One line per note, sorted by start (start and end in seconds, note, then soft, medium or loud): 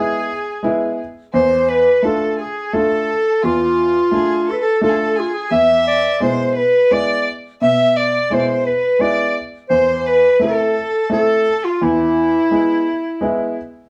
0.00 0.28 G#3 medium
0.00 0.29 B3 medium
0.00 0.29 E4 medium
0.00 0.99 G#4 medium
0.00 1.00 G#4 medium
0.63 0.98 G#3 medium
0.63 0.99 B3 medium
0.63 0.99 E4 medium
1.34 1.86 E2 medium
1.34 1.69 C5 medium
1.34 1.71 C5 medium
1.68 2.04 B4 medium
2.03 2.38 A3 medium
2.03 2.39 D4 medium
2.03 2.39 F4 medium
2.03 2.37 A4 medium
2.03 2.38 A4 medium
2.38 2.74 G#4 medium
2.38 2.76 G#4 medium
2.72 3.08 A3 medium
2.72 3.09 D4 medium
2.72 3.09 F4 medium
2.72 3.44 A4 medium
2.72 3.46 A4 medium
3.43 3.95 E2 medium
3.43 4.12 F4 medium
3.43 4.52 F4 medium
4.12 4.47 A3 medium
4.12 4.48 D4 soft
4.12 4.48 F4 medium
4.12 4.45 G#4 medium
4.47 4.60 A4 medium
4.47 4.54 A4 medium
4.52 4.64 B4 medium
4.61 4.81 A4 medium
4.61 4.82 A4 medium
4.81 5.17 A3 medium
4.81 5.17 D4 medium
4.81 5.18 F4 medium
4.81 4.90 A4 medium
4.81 5.19 A4 medium
4.89 4.96 G#4 medium
4.94 5.17 A4 medium
5.15 5.52 G#4 medium
5.15 5.21 G#4 medium
5.20 5.33 F4 medium
5.32 5.51 G#4 medium
5.51 6.03 E2 medium
5.51 6.20 E5 medium
5.51 5.84 E5 loud
5.87 6.20 D5 medium
6.20 6.57 B2 medium
6.20 6.56 G#3 medium
6.20 6.57 E4 medium
6.20 6.54 C5 medium
6.20 6.58 C5 medium
6.55 6.92 B4 medium
6.55 6.94 B4 medium
6.90 7.26 G#3 medium
6.90 7.26 B3 medium
6.90 7.27 E4 medium
6.90 7.26 D5 medium
6.90 7.27 D5 loud
7.61 8.13 B2 medium
7.61 7.98 E5 loud
7.61 7.98 E5 medium
7.96 8.32 D5 medium
7.96 8.35 D5 medium
8.30 8.66 B2 soft
8.30 8.66 G#3 medium
8.30 8.66 E4 medium
8.30 8.41 C5 medium
8.30 8.65 C5 medium
8.39 8.47 D5 medium
8.46 8.69 C5 medium
8.66 9.02 B4 medium
8.66 9.01 B4 medium
8.99 9.35 G#3 medium
8.99 9.36 B3 medium
8.99 9.36 E4 medium
8.99 9.36 D5 medium
8.99 9.34 D5 medium
9.69 10.23 E2 medium
9.69 9.98 C5 loud
9.69 10.08 C5 medium
9.98 10.08 C5 medium
10.07 10.44 B4 medium
10.07 10.41 B4 loud
10.40 10.75 A3 medium
10.40 10.76 C4 medium
10.40 10.76 E4 medium
10.40 11.12 A4 medium
10.40 11.08 A4 medium
11.10 11.45 A3 medium
11.10 11.46 C4 medium
11.10 11.46 E4 medium
11.10 11.66 A4 medium
11.65 11.84 F4 medium
11.82 12.33 E2 medium
11.82 13.56 E4 medium
11.82 13.57 E4 medium
12.51 12.86 G#3 medium
12.51 12.86 B3 soft
12.51 12.86 E4 medium
13.21 13.56 G#3 medium
13.21 13.56 B3 medium
13.21 13.57 E4 medium